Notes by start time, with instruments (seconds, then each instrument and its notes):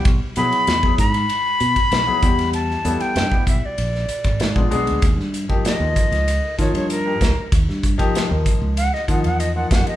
0.05 fingered electric bass B1, kick, ride
0.36 fingered electric bass B2, grand piano F#3 B3 E4 G#4, flute B5, hi-hat pedal, ride
0.52 ride
0.67 fingered electric bass E2, snare, ride
0.83 grand piano F#3 B3 E4 G#4, kick
0.98 fingered electric bass G#2, flute B5, kick, hi-hat pedal, ride
1.14 grand piano E4 G#4, ride
1.29 ride
1.60 fingered electric bass B2, hi-hat pedal, ride
1.76 kick, ride
1.92 fingered electric bass B1, snare, ride
2.07 grand piano F#3 B3 E4 G#4
2.22 fingered electric bass E2, grand piano G3 B3 E4 G4, kick, hi-hat pedal, ride
2.39 snare, ride
2.53 flute A5, ride
2.70 snare
2.85 fingered electric bass E2, grand piano G3 B3 E4 A4, hi-hat pedal, ride
3.00 flute G5, muted fingered electric bass stroke, ride
3.15 fingered electric bass G2, snare, ride
3.31 grand piano G3 B3 E4 G4, kick
3.47 fingered electric bass B1, flute E5, kick, hi-hat pedal, ride
3.62 grand piano E4 F#4, flute D5
3.78 fingered electric bass A#1, ride
3.95 snare
4.09 muted fingered electric bass stroke, hi-hat pedal, ride
4.24 fingered electric bass G#1, kick, ride
4.40 fingered electric bass G#2, snare, ride
4.56 fingered electric bass A#1, grand piano G#3 B3 D4 F4, kick
4.71 fingered electric bass B1, grand piano G#3 B3 D4 G#4, hi-hat pedal, ride
4.87 fingered electric bass D2, ride
5.02 fingered electric bass D#2, kick, hi-hat pedal, ride
5.18 fingered electric bass G2, snare
5.34 hi-hat pedal, ride
5.49 grand piano F3 A#3 D#4 G4, kick
5.64 flute D#5, muted fingered electric bass stroke, snare, hi-hat pedal, ride
5.80 fingered electric bass D#2, grand piano F3 A#3 D#4 F4
5.96 kick, hi-hat pedal, ride
6.12 fingered electric bass C#2, snare, ride
6.28 hi-hat pedal, ride
6.42 grand piano D#4 A#4
6.58 fingered electric bass D#3, grand piano F3 A#3 D#4 F4, flute C#5, kick, snare, hi-hat pedal, ride
6.73 fingered electric bass G2, flute C#5, ride
6.90 flute A#4, hi-hat pedal, ride
7.05 grand piano F3 A#3 D#4 G4
7.20 fingered electric bass C#2, grand piano D#4 G4, kick, snare, hi-hat pedal, ride
7.37 muted fingered electric bass stroke
7.52 fingered electric bass D#2, kick, hi-hat pedal, ride
7.69 fingered electric bass G2, snare
7.83 kick, hi-hat pedal, ride
7.98 grand piano F3 A#3 D#4 G4, kick, ride
8.15 muted fingered electric bass stroke, snare, hi-hat pedal, ride
8.29 fingered electric bass D#2, grand piano F3 A#3 D#4 A#4
8.46 kick, hi-hat pedal, ride
8.62 fingered electric bass C#2
8.77 flute F#5, hi-hat pedal, ride
8.92 grand piano D#4 G4, flute D#5, snare
9.08 fingered electric bass D#3, grand piano F3 A#3 D#4 F4, flute F#5, kick, hi-hat pedal, ride
9.24 fingered electric bass E2, flute F#5, ride
9.40 flute D#5, hi-hat pedal, ride
9.55 grand piano F3 A#3 D#4 F4, flute F#5
9.70 fingered electric bass F2, grand piano F3 A#3 D#4 G4, flute F#5, kick, snare, hi-hat pedal, ride
9.87 flute D#5, muted fingered electric bass stroke, ride